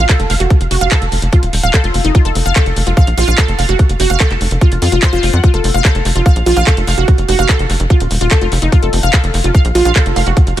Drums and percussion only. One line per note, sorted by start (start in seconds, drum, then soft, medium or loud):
0.09 kick loud
0.09 clap loud
0.09 closed hi-hat medium
0.20 closed hi-hat medium
0.30 open hi-hat loud
0.40 closed hi-hat medium
0.50 kick loud
0.50 closed hi-hat medium
0.61 closed hi-hat medium
0.71 open hi-hat loud
0.81 closed hi-hat medium
0.91 kick loud
0.91 clap loud
0.91 closed hi-hat medium
1.02 closed hi-hat medium
1.12 open hi-hat medium
1.22 closed hi-hat medium
1.33 kick loud
1.33 closed hi-hat medium
1.43 closed hi-hat medium
1.53 open hi-hat loud
1.63 closed hi-hat medium
1.74 kick loud
1.74 clap loud
1.74 closed hi-hat medium
1.84 closed hi-hat medium
1.94 open hi-hat loud
2.05 closed hi-hat medium
2.15 kick loud
2.15 closed hi-hat medium
2.25 closed hi-hat medium
2.35 open hi-hat loud
2.46 closed hi-hat medium
2.56 kick loud
2.56 clap loud
2.56 closed hi-hat medium
2.66 closed hi-hat medium
2.76 open hi-hat loud
2.87 closed hi-hat medium
2.97 kick loud
2.97 closed hi-hat medium
3.07 closed hi-hat medium
3.18 open hi-hat loud
3.28 closed hi-hat medium
3.38 kick loud
3.38 clap loud
3.38 closed hi-hat medium
3.48 closed hi-hat medium
3.59 open hi-hat loud
3.69 closed hi-hat medium
3.79 kick loud
3.79 closed hi-hat medium
3.89 closed hi-hat medium
4.00 open hi-hat loud
4.10 closed hi-hat medium
4.20 kick loud
4.20 clap loud
4.20 closed hi-hat medium
4.31 clap soft
4.31 closed hi-hat medium
4.41 open hi-hat medium
4.51 closed hi-hat medium
4.61 kick loud
4.61 closed hi-hat medium
4.72 closed hi-hat medium
4.82 open hi-hat loud
4.92 closed hi-hat medium
5.02 kick loud
5.02 clap loud
5.02 closed hi-hat medium
5.13 closed hi-hat medium
5.23 open hi-hat loud
5.33 closed hi-hat medium
5.44 kick loud
5.44 closed hi-hat medium
5.54 closed hi-hat medium
5.64 open hi-hat loud
5.74 closed hi-hat medium
5.85 kick loud
5.85 clap loud
5.85 closed hi-hat medium
5.95 closed hi-hat medium
6.05 open hi-hat medium
6.16 closed hi-hat medium
6.26 kick loud
6.26 closed hi-hat medium
6.36 closed hi-hat medium
6.46 open hi-hat loud
6.57 closed hi-hat medium
6.67 kick loud
6.67 clap loud
6.67 closed hi-hat medium
6.77 closed hi-hat medium
6.87 open hi-hat medium
6.98 closed hi-hat medium
7.08 kick loud
7.08 closed hi-hat medium
7.18 closed hi-hat medium
7.29 open hi-hat loud
7.39 closed hi-hat medium
7.49 kick loud
7.49 clap loud
7.49 closed hi-hat medium
7.59 closed hi-hat medium
7.70 open hi-hat medium
7.80 closed hi-hat medium
7.90 kick loud
7.90 closed hi-hat medium
8.00 closed hi-hat medium
8.11 open hi-hat loud
8.21 closed hi-hat medium
8.31 kick loud
8.31 clap loud
8.31 closed hi-hat medium
8.42 closed hi-hat medium
8.52 open hi-hat medium
8.62 closed hi-hat medium
8.72 kick loud
8.72 closed hi-hat medium
8.83 closed hi-hat medium
8.93 open hi-hat loud
9.03 closed hi-hat medium
9.13 kick loud
9.13 clap loud
9.13 closed hi-hat medium
9.24 closed hi-hat medium
9.34 open hi-hat medium
9.44 closed hi-hat medium
9.55 kick loud
9.55 closed hi-hat medium
9.65 closed hi-hat medium
9.75 open hi-hat medium
9.85 closed hi-hat medium
9.96 kick loud
9.96 clap loud
9.96 closed hi-hat medium
10.06 closed hi-hat medium
10.16 open hi-hat medium
10.26 closed hi-hat medium
10.37 kick loud
10.37 closed hi-hat medium
10.47 closed hi-hat medium